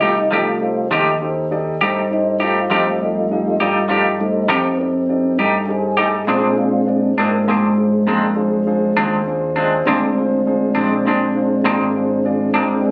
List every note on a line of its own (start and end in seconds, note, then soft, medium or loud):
0.01 0.88 C2 medium
0.01 0.20 A3 soft
0.01 0.24 D#4 medium
0.01 0.20 D#4 soft
0.01 0.16 F4 medium
0.01 0.19 G4 soft
0.01 0.24 G4 soft
0.01 0.24 A4 soft
0.01 0.24 D#5 medium
0.18 0.31 D#4 medium
0.31 0.49 F3 medium
0.31 0.50 A3 medium
0.31 0.88 A3 medium
0.31 0.54 D#4 medium
0.31 0.50 D#4 medium
0.31 0.90 F4 medium
0.31 0.54 G4 soft
0.31 0.50 G4 medium
0.31 0.54 A4 soft
0.31 0.54 D5 medium
0.60 0.83 D#4 medium
0.60 0.84 G4 soft
0.60 0.84 A4 soft
0.60 0.84 C5 medium
0.91 1.78 D#2 medium
0.91 1.09 F3 medium
0.91 1.09 A3 medium
0.91 1.14 D#4 medium
0.91 1.10 D#4 medium
0.91 1.14 G4 soft
0.91 1.10 G4 medium
0.91 1.14 A4 soft
0.91 1.14 D#5 medium
1.21 1.43 D#4 medium
1.21 1.44 G4 soft
1.21 1.44 A4 medium
1.21 1.44 C5 medium
1.51 1.73 D#4 medium
1.51 1.73 G4 medium
1.51 1.74 A4 medium
1.51 1.74 D5 medium
1.81 2.68 G2 medium
1.81 2.00 A3 medium
1.81 2.03 D#4 medium
1.81 2.00 D#4 soft
1.81 1.99 G4 medium
1.81 2.04 G4 medium
1.81 2.04 A4 medium
1.81 2.04 C5 medium
2.11 2.33 D#4 medium
2.11 2.41 D#4 medium
2.11 2.33 G4 soft
2.11 2.33 A4 soft
2.11 2.34 C5 medium
2.39 2.59 A3 soft
2.39 2.59 D#4 soft
2.39 2.63 D#4 medium
2.39 2.42 E4 medium
2.39 2.58 G4 medium
2.39 2.63 G4 soft
2.39 2.64 A4 soft
2.43 4.17 F4 medium
2.43 2.64 C5 medium
2.70 3.57 F2 medium
2.70 2.88 F3 medium
2.70 3.56 G3 medium
2.70 2.88 A3 medium
2.70 3.56 A3 soft
2.70 2.89 D#4 medium
2.70 2.93 D#4 medium
2.70 3.57 D#4 medium
2.70 2.89 G4 medium
2.70 2.93 G4 medium
2.70 2.93 A4 medium
2.70 2.93 C5 medium
3.01 3.23 D#4 medium
3.01 3.23 G4 soft
3.01 3.23 A4 soft
3.01 3.23 D5 medium
3.31 3.53 D#4 medium
3.31 3.53 G4 soft
3.31 3.53 A4 medium
3.31 3.53 D#5 medium
3.60 4.47 G2 medium
3.60 3.79 A3 soft
3.60 3.82 D#4 medium
3.60 3.79 D#4 soft
3.60 3.78 G4 medium
3.60 3.83 G4 medium
3.60 3.83 A4 medium
3.60 3.83 D5 medium
3.88 4.07 F3 medium
3.88 4.07 A3 medium
3.88 4.12 D#4 medium
3.88 4.08 D#4 medium
3.88 4.12 G4 medium
3.88 4.08 G4 medium
3.88 4.12 A4 medium
3.88 4.13 D5 medium
4.19 4.47 G3 soft
4.19 4.47 A3 soft
4.19 4.41 D#4 soft
4.19 4.49 D#4 medium
4.19 4.42 G4 soft
4.19 4.42 A4 soft
4.19 4.42 C5 soft
4.48 5.36 F2 medium
4.48 4.67 F3 medium
4.48 4.67 A3 medium
4.48 4.79 C4 medium
4.48 4.72 D#4 soft
4.48 4.67 D#4 medium
4.48 4.72 G4 soft
4.48 4.67 G4 medium
4.48 4.72 A4 soft
4.48 4.72 C5 medium
4.77 4.80 B3 medium
4.77 5.38 C4 medium
4.77 5.01 D#4 soft
4.77 5.01 G4 soft
4.77 5.02 A4 soft
4.77 5.02 D5 soft
5.09 5.31 D#4 soft
5.09 5.31 G4 soft
5.09 5.31 A4 soft
5.09 5.32 D5 medium
5.38 6.26 G2 medium
5.38 5.58 A3 soft
5.38 5.61 D#4 medium
5.38 5.57 D#4 soft
5.38 5.61 G4 soft
5.38 5.57 G4 soft
5.38 5.61 A4 soft
5.38 5.61 D5 medium
5.66 5.90 D#4 soft
5.66 5.69 G4 medium
5.66 5.90 G4 soft
5.66 5.91 A4 soft
5.66 5.91 C5 soft
5.71 6.56 G#4 medium
5.97 6.17 A3 soft
5.97 6.20 D#4 soft
5.97 6.16 D#4 soft
5.97 6.16 G4 soft
5.97 6.20 G4 soft
5.97 6.21 A4 soft
5.97 6.21 D#5 medium
6.27 6.46 A#2 medium
6.27 7.15 A#2 medium
6.27 7.13 G#3 soft
6.27 6.46 G#3 medium
6.27 6.88 C4 soft
6.27 6.46 C4 medium
6.27 6.50 D4 medium
6.27 7.14 D4 medium
6.27 6.47 D4 medium
6.27 6.50 F4 medium
6.27 6.50 G#4 medium
6.27 6.51 C5 medium
6.57 6.80 D4 soft
6.57 6.80 F4 soft
6.57 6.87 F4 medium
6.57 6.80 G#4 soft
6.57 6.80 C5 medium
6.86 7.17 C4 medium
6.86 7.10 D4 soft
6.86 7.10 F4 soft
6.86 7.10 G#4 soft
6.86 7.10 D5 medium
7.17 8.05 G#2 medium
7.17 7.37 G#3 soft
7.17 7.47 A#3 medium
7.17 7.36 C4 soft
7.17 7.40 D4 soft
7.17 7.36 D4 soft
7.17 7.40 F4 soft
7.17 7.40 G#4 soft
7.17 7.40 C5 medium
7.46 7.66 A#2 soft
7.46 7.66 G#3 soft
7.46 9.23 G#3 medium
7.46 7.67 C4 medium
7.46 7.69 D4 soft
7.46 7.69 F4 soft
7.46 7.70 G#4 soft
7.46 7.70 C5 medium
7.50 7.67 D4 medium
7.77 7.99 D4 soft
7.77 7.99 F4 soft
7.77 8.00 G#4 soft
7.77 8.00 C5 medium
8.06 8.94 F2 medium
8.06 8.25 A#2 medium
8.06 8.25 G#3 medium
8.06 8.26 C4 medium
8.06 8.29 D4 soft
8.06 8.26 D4 medium
8.06 8.29 F4 soft
8.06 8.30 G#4 soft
8.06 8.30 A#4 medium
8.36 8.59 D4 medium
8.36 8.59 F4 soft
8.36 8.59 G#4 medium
8.36 8.59 C5 medium
8.67 8.89 D4 medium
8.67 8.89 F4 medium
8.67 8.89 G#4 medium
8.67 8.90 C5 medium
8.97 9.84 D#2 medium
8.97 9.16 G#3 soft
8.97 9.15 C4 soft
8.97 9.15 D4 medium
8.97 9.19 D4 medium
8.97 9.20 F4 medium
8.97 9.20 G#4 medium
8.97 9.20 C5 medium
9.27 9.49 D4 medium
9.27 9.49 F4 soft
9.27 9.49 G#4 medium
9.27 9.49 C5 medium
9.56 9.75 G#3 soft
9.56 9.74 C4 soft
9.56 9.74 D4 medium
9.56 9.79 D4 medium
9.56 9.79 F4 medium
9.56 9.79 G#4 medium
9.56 9.79 C5 medium
9.86 10.73 D2 medium
9.86 10.04 A#2 medium
9.86 12.91 G#3 medium
9.86 10.04 G#3 medium
9.86 12.91 C4 soft
9.86 10.05 C4 medium
9.86 10.09 D4 medium
9.86 12.91 D4 medium
9.86 10.05 D4 medium
9.86 10.09 F4 medium
9.86 10.09 G#4 medium
9.86 10.09 C5 medium
10.17 10.39 D4 medium
10.17 10.39 F4 medium
10.17 10.39 G#4 medium
10.17 10.39 C5 medium
10.46 10.68 D4 medium
10.46 10.69 F4 medium
10.46 10.69 G#4 medium
10.46 10.69 C5 medium
10.75 11.62 A#1 medium
10.75 10.95 G#3 soft
10.75 10.94 C4 soft
10.75 10.93 D4 medium
10.75 10.98 D4 medium
10.75 10.98 F4 medium
10.75 10.98 G#4 soft
10.75 10.99 C5 medium
11.05 11.23 A#2 medium
11.05 11.24 G#3 medium
11.05 11.24 C4 medium
11.05 11.28 D4 medium
11.05 11.25 D4 medium
11.05 11.28 F4 medium
11.05 11.28 G#4 medium
11.05 11.28 C5 medium
11.36 11.58 D4 medium
11.36 11.58 F4 medium
11.36 11.58 G#4 medium
11.36 11.58 C5 medium
11.64 12.52 G#1 medium
11.64 11.83 A#2 medium
11.64 11.83 G#3 medium
11.64 11.83 C4 medium
11.64 11.83 D4 medium
11.64 11.88 D4 medium
11.64 11.88 F4 medium
11.64 11.88 G#4 medium
11.64 11.88 A#4 medium
11.95 12.17 D4 medium
11.95 12.18 F4 medium
11.95 12.18 G#4 medium
11.95 12.18 C5 medium
12.25 12.47 D4 medium
12.25 12.47 F4 medium
12.25 12.48 G#4 medium
12.25 12.48 D5 medium
12.54 12.91 G1 medium
12.54 12.73 G#3 soft
12.54 12.73 C4 medium
12.54 12.72 D4 medium
12.54 12.77 D4 medium
12.54 12.77 F4 medium
12.54 12.77 G#4 medium
12.54 12.77 A#4 medium
12.81 12.91 D4 medium
12.81 12.91 F4 soft
12.81 12.85 G4 medium
12.85 12.91 G#4 medium
12.85 12.91 C5 medium